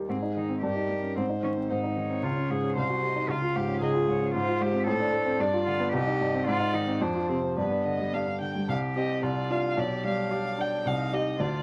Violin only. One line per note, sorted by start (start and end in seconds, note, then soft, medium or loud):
0.08 0.59 G#4 soft
0.63 1.18 A#4 soft
1.17 1.70 C5 medium
1.70 1.78 C5 soft
1.98 2.76 C#5 soft
2.78 2.86 F5 medium
3.04 3.33 D#5 soft
3.31 3.82 F5 medium
3.83 3.91 D#5 medium
4.09 4.34 C#5 medium
4.35 4.86 C5 medium
4.87 5.41 C5 medium
5.40 5.93 D5 medium
5.93 6.48 D#5 medium
6.47 7.03 D5 medium
7.01 7.57 C5 medium
7.58 7.86 B4 medium
7.86 8.15 D#5 medium
8.14 8.41 F5 medium
8.42 8.69 G5 medium
8.70 8.78 F5 medium
8.97 9.23 D#5 medium
9.24 9.53 D5 medium
9.51 9.81 F5 medium
9.79 10.06 D5 medium
10.06 10.62 F5 medium
10.61 10.89 G5 medium
10.87 11.15 F5 medium
11.14 11.42 D#5 medium
11.40 11.63 D5 medium